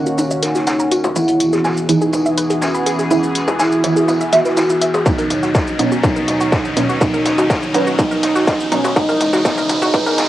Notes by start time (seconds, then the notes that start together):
Already playing: D#3 A#3 C#4 D#4 F#4, riser
0.06 F#4, shaker
0.18 D#4, mid tom, tambourine, shaker
0.31 D#5, shaker
0.42 D#4 A#4, snare, closed hi-hat, tambourine, shaker
0.55 F#4, snare, shaker
0.67 F#5, snare, closed hi-hat, mid tom, tambourine, shaker
0.79 A#5, shaker
0.91 F#4, closed hi-hat, tambourine, shaker
1.04 F#4, low conga, shaker
1.15 E3 B3 E4 G#4, mid tom, tambourine, shaker
1.27 closed hi-hat, shaker
1.40 closed hi-hat, tambourine, shaker
1.53 G#4, snare, shaker
1.64 G#5, snare, mid tom, tambourine, shaker
1.77 shaker
1.89 E3 B3 D#4 E4 G#4, closed hi-hat, tambourine, shaker
2.01 G#4, shaker
2.13 E4, mid tom, tambourine, shaker
2.26 E5, shaker
2.38 B4, closed hi-hat, tambourine, shaker
2.50 G#4, closed hi-hat, shaker
2.62 C#4 G#5, snare, mid tom, tambourine, shaker
2.75 B5, shaker
2.86 G#4, snare, closed hi-hat, tambourine, shaker
2.99 G#4, snare, shaker
3.10 E3 B3 E4, mid tom, tambourine, shaker
3.23 shaker
3.35 snare, closed hi-hat, tambourine, shaker
3.48 G#4, low conga, shaker
3.60 E4 G#5, snare, mid tom, tambourine, shaker
3.72 shaker
3.84 E3 B3 E4, closed hi-hat, tambourine, shaker
3.97 G#4, shaker
4.08 E4, mid tom, tambourine, shaker
4.21 E5, shaker
4.32 E3 B3 E4 F#4 E5, snare, closed hi-hat, tambourine, shaker
4.45 B4, snare, shaker
4.57 E4, snare, closed hi-hat, mid tom, tambourine, shaker
4.70 E4, shaker
4.82 E5, closed hi-hat, tambourine, shaker
4.94 G#4, low conga, shaker
5.06 D#2 B2 F#3 B3 C#4 D#4, kick, mid tom, tambourine, shaker
5.18 A#4, closed hi-hat, shaker
5.30 closed hi-hat, mid tom, tambourine, shaker
5.42 F#4, snare, shaker
5.55 D#5, kick, snare, mid tom, tambourine, shaker
5.67 shaker
5.79 B2 F#3 B3 C#4 D#4, closed hi-hat, mid tom, tambourine, shaker
5.92 F#4, shaker
6.03 B2 F#3 B3 D#4, kick, mid tom, tambourine, shaker
6.16 A#4, shaker
6.28 closed hi-hat, mid tom, tambourine, shaker
6.41 F#4, closed hi-hat, shaker
6.52 D#5, kick, snare, mid tom, tambourine, shaker
6.65 shaker
6.76 B2 F#3 B3 C#4 D#4, snare, closed hi-hat, mid tom, tambourine, shaker
6.89 F#4, snare, shaker
7.01 B2 F#3 B3 D#4, kick, mid tom, tambourine, shaker
7.14 A#4, shaker
7.25 snare, closed hi-hat, mid tom, tambourine, shaker
7.38 F#4, low conga, shaker
7.50 D#5, kick, snare, mid tom, tambourine, shaker
7.63 shaker
7.74 B2 F#3 B3 C#4 D#4, closed hi-hat, mid tom, tambourine, shaker
7.87 F#4, shaker
7.99 B2 F#3 B3 D#4, kick, mid tom, tambourine, shaker
8.11 A#4, shaker
8.23 snare, closed hi-hat, mid tom, tambourine, shaker
8.36 F#4, snare, shaker
8.47 D#5, kick, snare, closed hi-hat, mid tom, tambourine, shaker
8.60 shaker
8.72 B2 F#3 B3 C#4 D#4, closed hi-hat, mid tom, tambourine, shaker
8.84 F#4, low conga, shaker
8.96 B2 C#3 E3 F#3 G#3 B3 D#4, kick, mid tom, tambourine, shaker
9.09 A#4, closed hi-hat, mid tom, shaker
9.20 closed hi-hat, mid tom, tambourine, shaker
9.33 F#4, snare, mid tom, shaker
9.45 B2 F#3 B3 D#4, kick, snare, mid tom, tambourine, shaker
9.58 A#4, mid tom, shaker
9.69 closed hi-hat, mid tom, tambourine, shaker
9.82 F#4, mid tom, shaker
9.94 B2 F#3 B3 D#4, kick, mid tom, tambourine, shaker
10.06 A#4, mid tom, shaker
10.18 snare, closed hi-hat, mid tom, tambourine, shaker